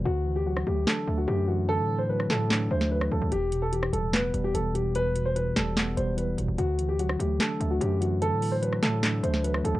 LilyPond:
<<
  \new Staff \with { instrumentName = "Grand piano" } { \time 4/4 \key d \mixolydian \tempo 4 = 147 fis'8. g'16 fis'8 g'8 a'8. fis'16 g'8 fis'8 | a'8. c''16 b'8 a'4 c''8 b'8 a'8 | g'8. a'16 g'8 a'8 b'8. g'16 a'8 g'8 | b'8. c''16 b'8 a'4 c''8 b'8 r8 |
fis'8. g'16 fis'8 g'8 a'8. fis'16 g'8 fis'8 | a'8. c''16 b'8 a'4 c''8 b'8 a'8 | }
  \new Staff \with { instrumentName = "Tine electric piano" } { \clef bass \time 4/4 \key d \mixolydian d8 e8 fis8 a8 d'8 a8 fis8 e8 | d8 e8 fis8 a8 d'8 a8 fis8 e8 | e,8 b,8 e8 g8 b8 g8 e8 b,8 | e,8 b,8 e8 g8 b8 g8 e8 b,8 |
d8 e8 fis8 a8 d'8 a8 fis8 e8 | d8 e8 fis8 a8 d'8 a8 fis8 e8 | }
  \new Staff \with { instrumentName = "808-style bass" } { \clef bass \time 4/4 \key d \mixolydian d,4. d,8 r8 d,8 fis,4~ | fis,16 a,4~ a,16 a,4 d,4 d,16 d,16 | e,,4. d,,4 e,,8 e,,4~ | e,,4. e,,4 e,,4 e,,16 e,,16 |
d,4. d,8 r8 d,8 fis,4~ | fis,16 a,4~ a,16 a,4 d,4 d,16 d,16 | }
  \new DrumStaff \with { instrumentName = "Drums" } \drummode { \time 4/4 r4 r16 ss8. <hc sn>4 r4 | r4 r16 ss16 <hc sn>8 <hc sn>8. sn16 r16 ss8. | hh8 hh8 hh16 ss16 hh8 <hc hh sn>8 hh8 hh8 hh8 | hh8 hh8 hh8 <hc hh sn>8 <hc hh sn>8 hh8 hh8 hh8 |
hh8 hh8 hh16 ss16 hh8 <hc hh sn>8 hh8 hh8 hh8 | hh8 hho8 hh16 ss16 <hc hh sn>8 <hc hh sn>8 hh16 sn16 hh16 ss16 hh8 | }
>>